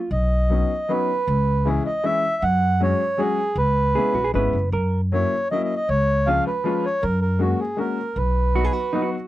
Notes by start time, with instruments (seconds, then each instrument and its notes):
0.11 upright bass B1, accordion D#5
0.50 upright piano F#3 B3 C#4 D#4
0.89 upright piano F#3 B3 C#4 D#4, accordion B4
1.28 upright bass C#2
1.65 upright piano E3 G#3 C#4 E4, accordion G#4
1.86 accordion D#5
2.04 upright piano E3 G#3 C#4 E4, accordion E5
2.42 upright bass F#2, accordion F#5
2.80 upright piano F#3 G#3 C#4 F#4, accordion C#5
3.18 upright piano F#3 G#3 C#4 F#4, accordion G#4
3.56 upright bass C#2, accordion B4
3.95 upright piano G#3 B3 C#4 E4, hollow-body jazz guitar G#4
4.14 upright bass A#1, hollow-body jazz guitar F#4
4.24 hollow-body jazz guitar G#4
4.34 upright bass G#1, upright piano G#3 B3 C#4 E4, hollow-body jazz guitar B4
4.53 upright bass F#1
4.72 upright bass F#2, hollow-body jazz guitar A#4
5.12 upright piano F#3 A#3 C#4 E4, accordion C#5
5.51 upright piano F#3 A#3 C#4 E4, accordion D#5
5.64 accordion D#5
5.76 accordion D#5
5.89 upright bass C#2, accordion C#5
6.27 upright piano F3 G#3 C#4 F4, accordion F5
6.47 accordion B4
6.64 upright piano F3 G#3 C#4 F4
6.85 accordion C#5
7.03 upright bass F#2, accordion A#4
7.21 accordion A#4
7.39 upright piano G#3 A#3 C#4 F#4, accordion F#4
7.60 accordion G#4
7.77 upright piano G#3 A#3 C#4 F#4, accordion A#4
8.16 upright bass B1, accordion B4
8.55 upright piano F#3 B3 D#4 F#4, hollow-body jazz guitar F#4
8.64 hollow-body jazz guitar G#4
8.73 hollow-body jazz guitar F#4
8.93 upright piano F#3 B3 D#4 F#4, hollow-body jazz guitar D#4
9.02 hollow-body jazz guitar F#4